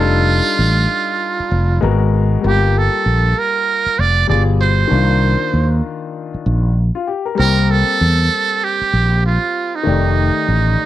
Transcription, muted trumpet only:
0.00 1.82 F4 loud
2.47 2.79 G4 medium
2.78 3.40 A4 medium
3.39 4.01 A#4 medium
4.00 4.29 D5 medium
4.30 4.43 D5 medium
4.61 5.80 C5 medium
7.39 7.73 A#4 loud
7.71 8.66 A4 loud
8.64 9.25 G4 medium
9.26 9.77 F4 medium
9.76 10.86 D#4 medium

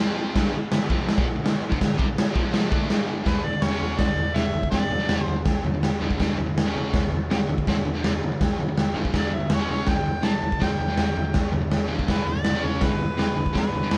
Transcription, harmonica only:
3.27 3.45 B4 medium
3.44 3.65 D5 medium
3.63 3.81 C#5 medium
3.83 4.00 C#5 medium
3.98 4.36 D5 loud
4.34 4.70 E5 medium
4.71 5.23 D5 loud
5.23 5.41 C5 loud
9.18 9.36 D5 medium
9.34 9.51 E5 medium
9.54 9.69 C#5 medium
9.72 9.90 C#5 medium
9.89 10.26 G5 loud
10.25 10.64 A5 loud
10.63 11.35 G5 loud
12.10 12.29 B4 loud
12.27 12.66 D5 loud
12.64 12.85 C#5 medium
12.84 13.56 B4 loud
13.58 13.98 B4 loud

